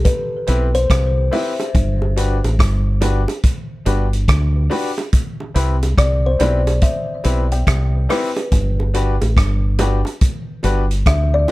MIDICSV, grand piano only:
0, 0, Header, 1, 2, 480
1, 0, Start_track
1, 0, Key_signature, 1, "major"
1, 0, Tempo, 847458
1, 988, Time_signature, 4, 2, 24, 8
1, 6522, End_track
2, 0, Start_track
2, 0, Title_t, "Grand piano"
2, 0, Program_c, 0, 0
2, 265, Note_on_c, 0, 60, 91
2, 268, Note_on_c, 0, 64, 80
2, 270, Note_on_c, 0, 67, 84
2, 272, Note_on_c, 0, 71, 103
2, 373, Note_off_c, 0, 60, 0
2, 375, Note_off_c, 0, 64, 0
2, 376, Note_off_c, 0, 67, 0
2, 377, Note_off_c, 0, 71, 0
2, 660, Note_on_c, 0, 71, 26
2, 662, Note_on_c, 0, 67, 25
2, 696, Note_off_c, 0, 67, 0
2, 696, Note_off_c, 0, 71, 0
2, 744, Note_on_c, 0, 60, 95
2, 746, Note_on_c, 0, 64, 85
2, 748, Note_on_c, 0, 67, 85
2, 750, Note_on_c, 0, 71, 109
2, 852, Note_off_c, 0, 60, 0
2, 854, Note_off_c, 0, 64, 0
2, 855, Note_off_c, 0, 67, 0
2, 856, Note_off_c, 0, 71, 0
2, 1225, Note_on_c, 0, 62, 88
2, 1227, Note_on_c, 0, 66, 84
2, 1229, Note_on_c, 0, 67, 77
2, 1231, Note_on_c, 0, 71, 91
2, 1333, Note_off_c, 0, 62, 0
2, 1334, Note_off_c, 0, 66, 0
2, 1335, Note_off_c, 0, 67, 0
2, 1336, Note_off_c, 0, 71, 0
2, 1703, Note_on_c, 0, 62, 91
2, 1706, Note_on_c, 0, 66, 80
2, 1708, Note_on_c, 0, 67, 81
2, 1710, Note_on_c, 0, 71, 98
2, 1812, Note_off_c, 0, 62, 0
2, 1813, Note_off_c, 0, 66, 0
2, 1814, Note_off_c, 0, 67, 0
2, 1815, Note_off_c, 0, 71, 0
2, 2183, Note_on_c, 0, 62, 91
2, 2186, Note_on_c, 0, 66, 77
2, 2187, Note_on_c, 0, 67, 82
2, 2190, Note_on_c, 0, 71, 95
2, 2292, Note_off_c, 0, 62, 0
2, 2293, Note_off_c, 0, 66, 0
2, 2294, Note_off_c, 0, 67, 0
2, 2295, Note_off_c, 0, 71, 0
2, 2579, Note_on_c, 0, 67, 25
2, 2579, Note_on_c, 0, 71, 29
2, 2614, Note_off_c, 0, 67, 0
2, 2615, Note_off_c, 0, 71, 0
2, 2660, Note_on_c, 0, 62, 99
2, 2663, Note_on_c, 0, 66, 87
2, 2664, Note_on_c, 0, 67, 88
2, 2666, Note_on_c, 0, 71, 109
2, 2770, Note_off_c, 0, 62, 0
2, 2772, Note_off_c, 0, 66, 0
2, 2772, Note_off_c, 0, 67, 0
2, 2773, Note_off_c, 0, 71, 0
2, 3140, Note_on_c, 0, 60, 87
2, 3143, Note_on_c, 0, 64, 84
2, 3145, Note_on_c, 0, 67, 84
2, 3148, Note_on_c, 0, 71, 100
2, 3250, Note_off_c, 0, 60, 0
2, 3252, Note_off_c, 0, 64, 0
2, 3252, Note_off_c, 0, 67, 0
2, 3254, Note_off_c, 0, 71, 0
2, 3620, Note_on_c, 0, 60, 92
2, 3623, Note_on_c, 0, 64, 78
2, 3625, Note_on_c, 0, 67, 88
2, 3626, Note_on_c, 0, 71, 105
2, 3730, Note_off_c, 0, 60, 0
2, 3731, Note_off_c, 0, 64, 0
2, 3732, Note_off_c, 0, 67, 0
2, 3733, Note_off_c, 0, 71, 0
2, 4099, Note_on_c, 0, 60, 94
2, 4102, Note_on_c, 0, 64, 82
2, 4104, Note_on_c, 0, 67, 80
2, 4107, Note_on_c, 0, 71, 102
2, 4209, Note_off_c, 0, 60, 0
2, 4211, Note_off_c, 0, 64, 0
2, 4212, Note_off_c, 0, 67, 0
2, 4213, Note_off_c, 0, 71, 0
2, 4499, Note_on_c, 0, 67, 26
2, 4500, Note_on_c, 0, 71, 30
2, 4534, Note_off_c, 0, 67, 0
2, 4534, Note_off_c, 0, 71, 0
2, 4582, Note_on_c, 0, 60, 94
2, 4584, Note_on_c, 0, 64, 94
2, 4586, Note_on_c, 0, 67, 88
2, 4589, Note_on_c, 0, 71, 107
2, 4691, Note_off_c, 0, 60, 0
2, 4692, Note_off_c, 0, 64, 0
2, 4693, Note_off_c, 0, 67, 0
2, 4694, Note_off_c, 0, 71, 0
2, 5062, Note_on_c, 0, 62, 92
2, 5064, Note_on_c, 0, 66, 81
2, 5067, Note_on_c, 0, 67, 85
2, 5070, Note_on_c, 0, 71, 106
2, 5171, Note_off_c, 0, 62, 0
2, 5172, Note_off_c, 0, 66, 0
2, 5173, Note_off_c, 0, 67, 0
2, 5175, Note_off_c, 0, 71, 0
2, 5542, Note_on_c, 0, 62, 94
2, 5545, Note_on_c, 0, 66, 83
2, 5548, Note_on_c, 0, 67, 86
2, 5549, Note_on_c, 0, 71, 96
2, 5651, Note_off_c, 0, 62, 0
2, 5652, Note_off_c, 0, 66, 0
2, 5654, Note_off_c, 0, 67, 0
2, 5654, Note_off_c, 0, 71, 0
2, 6022, Note_on_c, 0, 62, 95
2, 6024, Note_on_c, 0, 66, 84
2, 6028, Note_on_c, 0, 67, 87
2, 6029, Note_on_c, 0, 71, 104
2, 6130, Note_off_c, 0, 62, 0
2, 6132, Note_off_c, 0, 66, 0
2, 6133, Note_off_c, 0, 67, 0
2, 6134, Note_off_c, 0, 71, 0
2, 6421, Note_on_c, 0, 67, 26
2, 6422, Note_on_c, 0, 71, 27
2, 6455, Note_off_c, 0, 67, 0
2, 6455, Note_off_c, 0, 71, 0
2, 6522, End_track
0, 0, End_of_file